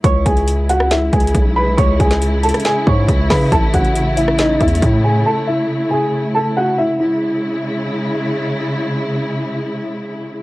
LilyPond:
<<
  \new Staff \with { instrumentName = "Grand piano" } { \time 4/4 \key cis \minor \tempo 4 = 138 <cis'' cis'''>8 <gis' gis''>4 <fis' fis''>8 <e' e''>8 <gis' gis''>4 <b' b''>8 | <cis'' cis'''>8 <gis' gis''>4 <a' a''>8 <gis' gis''>8 <cis'' cis'''>4 <b' b''>8 | <a' a''>8 <fis' fis''>4 <e' e''>8 <dis' dis''>8 <e' e''>4 <gis' gis''>8 | <a' a''>8 <e' e''>4 <gis' gis''>4 <a' a''>8 <fis' fis''>8 <e' e''>8 |
e'2. r4 | r1 | }
  \new Staff \with { instrumentName = "String section" } { \clef bass \time 4/4 \key cis \minor << { <cis e'>1~ | <cis e'>1~ | <cis e'>1~ | <cis e'>1 |
<cis gis e'>1~ | <cis gis e'>1 | } \\ { gis1~ | gis1 | a1~ | a1 |
r1 | r1 | } >> }
  \new Staff \with { instrumentName = "808-style bass" } { \clef bass \time 4/4 \key cis \minor cis,8 cis,2 cis,8 b,,4 | cis,8 cis,4~ cis,16 r8. gis,8 cis,8 cis8 | a,,8 a,,2 e,8 a,4 | r1 |
r1 | r1 | }
  \new DrumStaff \with { instrumentName = "Drums" } \drummode { \time 4/4 <hh bd>8 <hh bd>16 hh16 hh8 hh16 ss16 \tuplet 3/2 { <hh sn>16 r16 r16 <hh bd>16 hh16 hh16 } <hh bd>4 | <hh bd>8 <hh bd>16 <hh sn>16 hh8 hh32 hh32 <hh ss>32 hh32 <hh sn>8 bd8 <hh bd>8 <hho bd sn>8 | <hh bd>8 <hh bd>16 hh16 hh8 hh16 ss16 \tuplet 3/2 { <hh sn>16 r16 r16 <hh bd>16 hh16 hh16 } <hh bd>4 | r4 r4 r4 r4 |
r4 r4 r4 r4 | r4 r4 r4 r4 | }
>>